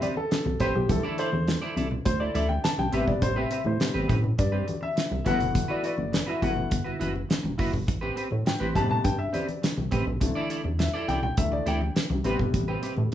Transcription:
0.01 C4 G4 B4 D5, closed hi-hat, high conga
0.16 A4, muted clean electric guitar stroke, high conga
0.30 muted clean electric guitar stroke, snare, closed hi-hat, muted conga
0.45 C2, muted clean electric guitar stroke, muted conga, high conga
0.60 A1 C4 G4 B4 C5, kick, closed hi-hat
0.74 B1 G4, muted clean electric guitar stroke, low conga
0.89 C2 D3 E3 A3 A4, muted clean electric guitar stroke, kick, closed hi-hat, muted conga
1.03 E4 A4 D5, muted conga
1.18 E4 A4 C5 D5, closed hi-hat
1.32 E2, muted clean electric guitar stroke, high conga
1.47 muted clean electric guitar stroke, snare, closed hi-hat, muted conga
1.62 E4 A4 D5
1.76 C2 E4 A4 D5, closed hi-hat, high conga
1.91 low conga
2.05 D2 C5, muted clean electric guitar stroke, kick, closed hi-hat
2.20 E4 A4 D5, muted conga
2.34 D2 E4 A4 D5 E5, closed hi-hat, high conga
2.49 G5, high conga
2.64 A5, muted clean electric guitar stroke, snare, closed hi-hat, muted conga
2.78 C2 G5, muted clean electric guitar stroke, muted conga, high conga
2.92 A1 C3 G3 B3 C4 G4 B4 E5, closed hi-hat
3.07 G1 D5, muted clean electric guitar stroke, kick, low conga
3.21 A1 C5, muted clean electric guitar stroke, kick, closed hi-hat
3.36 C4 G4 B4 E5
3.51 C4 G4 B4 E5, closed hi-hat
3.65 A2 C5, muted clean electric guitar stroke, high conga
3.80 C3 G3 B3, muted clean electric guitar stroke, snare, closed hi-hat
3.94 A1 C4 G4 B4, muted conga
4.08 A2 C4 G4 B4, kick, closed hi-hat, high conga
4.23 muted clean electric guitar stroke, low conga
4.38 G2 D5, muted clean electric guitar stroke, kick, closed hi-hat
4.52 C4 G4 B4, muted conga
4.66 muted clean electric guitar stroke, closed hi-hat, high conga
4.81 E5, muted clean electric guitar stroke, high conga
4.95 muted clean electric guitar stroke, snare, closed hi-hat, muted conga
5.10 C2, muted clean electric guitar stroke, high conga
5.25 G1 E3 F#3 A3 B3 E4 F#4 B4 F#5, kick, closed hi-hat
5.39 F#1, muted clean electric guitar stroke, closed hi-hat, low conga
5.54 G1, muted clean electric guitar stroke, kick, closed hi-hat
5.68 E4 F#4 B4 D5
5.83 E4 F#4 B4 D5, closed hi-hat
5.97 F#1, muted clean electric guitar stroke, high conga
6.12 muted clean electric guitar stroke, snare, closed hi-hat, muted conga
6.26 E4 F#4 B4 E5, muted conga
6.41 G1 E3 F#3 A3 B3 E4 F#4 B4 F#5, kick, closed hi-hat, high conga
6.56 muted clean electric guitar stroke, low conga
6.70 G1, muted clean electric guitar stroke, kick, closed hi-hat
6.84 E4 F#4 B4, muted conga
6.99 F#1 E4 F#4 B4, closed hi-hat, high conga
7.14 muted clean electric guitar stroke, high conga
7.29 muted clean electric guitar stroke, snare, closed hi-hat, muted conga
7.43 E1, muted clean electric guitar stroke, muted conga, high conga
7.58 F#1 E4 F#4 B4, kick, open hi-hat
7.73 G1, muted clean electric guitar stroke, kick, low conga
7.87 A1, muted clean electric guitar stroke, kick, closed hi-hat
8.01 C4 G4 B4, muted conga
8.16 C4 G4 B4, closed hi-hat
8.31 A2, muted clean electric guitar stroke, high conga
8.46 G5, muted clean electric guitar stroke, snare, closed hi-hat
8.60 A1 C4 G4 B4, muted conga
8.75 A2 C3 G3 B3 C4 G4 B4 A5, kick, closed hi-hat, high conga
8.90 A5, muted clean electric guitar stroke, low conga
9.04 G2 G5, kick, closed hi-hat, muted conga
9.18 E5, muted clean electric guitar stroke, muted conga
9.33 C4 G4 B4 D5, closed hi-hat, high conga
9.48 muted clean electric guitar stroke, closed hi-hat, high conga
9.62 muted clean electric guitar stroke, snare, closed hi-hat, muted conga
9.77 C2, muted clean electric guitar stroke, high conga
9.91 A1 C4 G4 B4, kick, closed hi-hat
10.06 B1, muted clean electric guitar stroke, low conga
10.20 C2 D3 E3 A3, muted clean electric guitar stroke, kick, closed hi-hat, muted conga
10.35 E4 A4 D5
10.50 E4 A4 D5, closed hi-hat
10.64 E2, muted clean electric guitar stroke, high conga
10.79 E5, muted clean electric guitar stroke, snare, closed hi-hat, muted conga
10.94 E4 A4 D5, muted conga
11.08 C2 E4 A4 D5 G5, closed hi-hat, high conga
11.23 G5, low conga
11.37 D2 D3 E3 A3 E5, muted clean electric guitar stroke, kick, closed hi-hat
11.52 D5, muted clean electric guitar stroke, muted conga
11.66 D2 E4 A4 D5 G5, closed hi-hat, high conga
11.81 muted clean electric guitar stroke, high conga
11.95 muted clean electric guitar stroke, snare, closed hi-hat
12.10 C2, muted clean electric guitar stroke, muted conga, high conga
12.24 A1 C3 G3 B3 C4 G4 B4, closed hi-hat
12.39 G1, muted clean electric guitar stroke, kick, low conga
12.54 A1, muted clean electric guitar stroke, kick, closed hi-hat, muted conga
12.68 C4 G4 B4, muted conga
12.82 C4 G4 B4, closed hi-hat
12.96 A2, muted clean electric guitar stroke, high conga

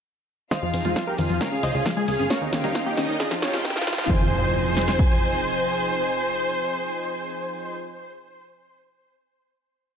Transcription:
0.51 D#3 F3 C4 D#4 F4 G#4 C5 D#5 F5, kick, snare, closed hi-hat, riser, shaker
0.62 F2 F3 F4
0.74 F2, open hi-hat, shaker
0.85 F2 G#3 F4, closed hi-hat, shaker
0.96 C4 F4, kick, snare, closed hi-hat, shaker
1.07 G4 A#4
1.18 F2 D#3 F4 F5, open hi-hat, shaker
1.30 F2 F3 F4, closed hi-hat, shaker
1.41 C#3 C#4 F4 A#4, kick, snare, closed hi-hat, shaker
1.52 C#4 G#4
1.63 C#2 F4 C5 D#5, open hi-hat, shaker
1.74 C#2 G#4, closed hi-hat, shaker
1.86 F3, kick, snare, closed hi-hat, shaker
1.97 G#3 G#4
2.08 C#2 F4 G#4 F5, open hi-hat, shaker
2.19 G#1 C#4 G#4, closed hi-hat, shaker
2.30 D#3 A#3 C#4 G4 A#4 C#5, kick, snare, closed hi-hat, shaker
2.42 D#2 D#4
2.53 D#2 D#3 F4 F5, snare, open hi-hat, shaker
2.63 D#2 G3 D#4, closed hi-hat, shaker
2.74 D#4, kick, snare, closed hi-hat, shaker
2.86 A#3 D#4 G4
2.97 D#2 C#4 D#4 D#5, snare, open hi-hat, shaker
3.09 D#2 D#4, closed hi-hat, shaker
3.20 D#3 F3 G#3 C4 D#4 F4 G#4, kick, snare, closed hi-hat, shaker
3.31 F3 F4, snare
3.42 F2 F4 G4 C#5 G5, snare, open hi-hat, shaker
3.53 F2 G#3 F4, snare, closed hi-hat, shaker
3.65 C4, kick, snare, closed hi-hat, shaker
3.70 snare
3.76 F4, snare
3.82 snare
3.87 F2 D#3 F4, snare, open hi-hat, shaker
3.93 snare
3.98 F1 F3 F4, snare, closed hi-hat, shaker
4.04 snare
4.10 F2 D#3 F3 C4 D#4 G#4 C5 G#5, kick, impact
4.77 snare
4.88 snare
4.99 kick

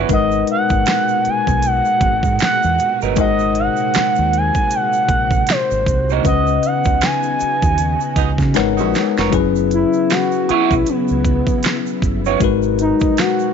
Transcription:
0.09 G#1 A#2 B2 G#3 D#4 F#4 A#4 B4 D#5, kick, closed hi-hat, shaker
0.13 F#5
0.32 shaker
0.47 F#5, closed hi-hat
0.69 G#1, kick, shaker
0.86 finger snap, snare, closed hi-hat, shaker
1.08 shaker
1.25 muted fingered electric bass stroke, closed hi-hat
1.29 G#5
1.47 B1, kick, shaker
1.62 F#5, closed hi-hat, shaker
1.85 shaker
2.01 G#1, kick, closed hi-hat
2.23 G#2, kick, shaker
2.39 finger snap, muted fingered electric bass stroke, snare, closed hi-hat, shaker
2.43 F#5
2.63 E2, shaker
2.79 closed hi-hat, shaker
3.02 G1 F#3 B3 D#4 A#4, shaker
3.16 G#1 C3 G#3 D#4 A#4 C5 D#5, kick, closed hi-hat, shaker
3.21 F#5
3.39 shaker
3.55 closed hi-hat
3.59 F#5
3.76 shaker
3.94 finger snap, muted fingered electric bass stroke, snare, closed hi-hat, shaker
4.15 D#2, shaker
4.33 closed hi-hat
4.37 G#5
4.55 kick, shaker
4.70 closed hi-hat, shaker
4.75 F#5
4.93 shaker
5.09 A#1, kick, closed hi-hat
5.31 kick, shaker
5.47 C5, finger snap, snare, closed hi-hat, shaker
5.71 G#1, shaker
5.86 C2, kick, closed hi-hat, shaker
6.10 A#3 D#4 F#4 C5, shaker
6.23 C#2 C#3 B3 C#4 D#4 F#4 B4 D#5, kick, closed hi-hat, shaker
6.27 F#5
6.47 shaker
6.63 F#5, closed hi-hat, shaker
6.84 C#2, kick, shaker
7.01 G#5, finger snap, snare, closed hi-hat, shaker
7.23 shaker
7.40 muted fingered electric bass stroke, closed hi-hat, shaker
7.62 D#2, kick, shaker
7.78 closed hi-hat, shaker
8.01 shaker
8.16 C#2 G#3 B3 D#4, kick, closed hi-hat, shaker
8.38 C#3, kick, snare, shaker
8.54 G#1 G#3 B3 D#4 A#4 B4 C#5 F#5, finger snap, snare, closed hi-hat, shaker
8.77 A#1 C#4 D#4 F#4, shaker
8.94 snare, closed hi-hat, shaker
9.17 F1 B3 F#4 A#4 C#5, snare, shaker
9.30 F#1 C#3 F#3 B3 C#4 E4 G#4, kick, closed hi-hat, shaker
9.34 B4
9.55 shaker
9.71 E4, closed hi-hat, shaker
9.93 shaker
10.10 F#4, finger snap, muted clean electric guitar stroke, snare, closed hi-hat, shaker
10.32 shaker
10.49 B3 E4 F#4 C#5, muted fingered electric bass stroke, closed hi-hat
10.71 B1, kick, shaker
10.86 B3, closed hi-hat, shaker
11.08 C#2, shaker
11.25 kick, closed hi-hat
11.47 kick, shaker
11.63 finger snap, snare, closed hi-hat, shaker
11.86 shaker
12.02 G1, kick, closed hi-hat
12.25 B3 E4 F#4 C#5, shaker
12.40 G#1 B2 F#3 G#3 D#4 F#4 A#4, kick, closed hi-hat, shaker
12.44 B4
12.63 shaker
12.79 D#4, closed hi-hat, shaker
13.00 kick, shaker
13.17 F#4, finger snap, muted clean electric guitar stroke, snare, closed hi-hat, shaker
13.39 shaker

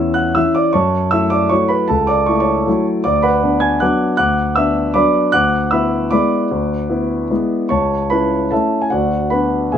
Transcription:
Already playing: E2 C#4 E4 E5 C#6 E6
0.14 F#5 F#6
0.35 E3 C#4 E4 E5 E6
0.55 D5 D6
0.73 F#2 C#5 A5 C#6
1.11 A3 E4 E5 E6
1.30 D5 D6
1.49 F#3 A3 E4 C#5 C#6
1.68 B4 B5
1.88 C#2 A4 A5
2.07 D5 D6
2.26 A3 E4 C#6
2.35 D6
2.40 C#5 A5 C#6
2.67 F#3 A3 E4
3.04 D2 D5 D6
3.22 B4 F#5 B5
3.43 B3 D4
3.60 G#5 G#6
3.80 F#3 B3 D4 F#5 D6 F#6
4.17 D2 F#5 D6 F#6
4.55 B3 D4 E5 E6
4.94 F#3 B3 D4 D5 B5 D6
5.32 D2 F#5 D6 F#6
5.71 B3 E4 E5 B5 E6
6.11 G#3 B3 E4 D5 B5 D6
6.51 D2
6.90 B3 E4
7.31 G#3 B3 E4
7.69 C#2 C#5 A5 C#6
8.10 C#4 E4 B4 B5
8.51 A3 C#4 E4 A4 E5 A5
8.82 G#5
8.90 D2 F#4 D5 F#5
9.30 B3 D4 B4 F#5 B5
9.72 E2 E3 B3 G#4 E5 G#5

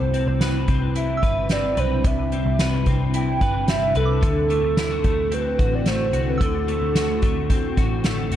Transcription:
Already playing: C2 C3 G3 C4 D4 E4 C5
0.14 C4, closed hi-hat
0.27 C2 C5
0.41 B4, snare, closed hi-hat, tambourine
0.68 C2 C4, kick, closed hi-hat
0.96 E4 E5, closed hi-hat
1.17 E6
1.23 G1 B4, kick, closed hi-hat
1.49 C4 D5, snare, closed hi-hat, tambourine
1.77 B1 B4 C5, closed hi-hat
2.04 C2 C3 E5, kick, closed hi-hat
2.32 C4, closed hi-hat
2.46 C2
2.59 B4, snare, closed hi-hat, tambourine
2.86 C2 C4, kick, closed hi-hat
3.14 E4 G5, closed hi-hat
3.41 G1 B4, kick, closed hi-hat
3.68 C4 E5, snare, closed hi-hat, tambourine
3.95 C2 A4 B4, closed hi-hat
4.05 D6
4.22 D2 D3 A3 C4 E4 F#4, kick, closed hi-hat
4.50 A3, closed hi-hat
4.63 D2
4.77 E4, snare, closed hi-hat, tambourine
4.90 F#4
5.04 D2 A3, kick, closed hi-hat
5.32 C4 B4, closed hi-hat
5.59 A1 F#4, kick, closed hi-hat
5.75 D5
5.86 A3 C5, snare, closed hi-hat, tambourine
6.13 C2 F#4, closed hi-hat
6.29 B4
6.38 D2 D3 E6, kick, closed hi-hat
6.43 A4
6.68 A3, closed hi-hat
6.82 D2
6.95 F#4, snare, closed hi-hat, tambourine
7.22 D2 A3, kick, closed hi-hat
7.50 C4, kick, closed hi-hat
7.77 A1 F#4, kick, closed hi-hat
8.04 A3, snare, closed hi-hat, tambourine
8.32 F#1 F#4, closed hi-hat

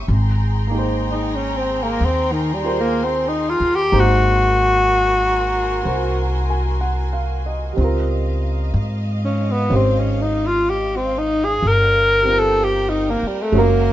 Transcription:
Already playing: A#3 C#4 G4
0.08 G#1 G#4 G5 A#5 C6
0.67 A#3 D#4
0.74 G#4
0.79 C5
1.11 D#4
1.35 C#4
1.56 C4
1.82 A#3
2.00 D#2
2.05 C4
2.32 D#3
2.54 G3
2.64 F4 A#4 C5
2.81 A#3
3.04 C4
3.28 D#4
3.50 F4
3.60 D#2
3.75 G4
3.92 G#1 A#3 D#4 F#4 G#4 A#4 C5 G#5
4.00 F#4
5.83 C2 F#4 A#4 C5
6.50 G#5
6.81 F#5
7.13 F5
7.46 D#5
7.73 G3 C4
7.77 C#2 F4 D#5 F5
7.84 A#4
8.74 G#2
9.25 C#4
9.51 B3
9.69 G#1 C#4 G4 C5
9.76 C4
9.99 C#4
10.22 D#4
10.46 F4
10.70 G4
10.96 C4
11.18 D#4
11.44 G#4
11.60 G1 A#4 G5
11.68 A#4
12.21 G3 C4
12.29 F4 A#4
12.39 A4
12.64 G4
12.89 D#4
13.10 A#3
13.23 muted upright bass stroke
13.28 G3
13.42 A3
13.52 F#1 G#3 C#4 F#4 E5 F#5 C6
13.58 A#3 A#4

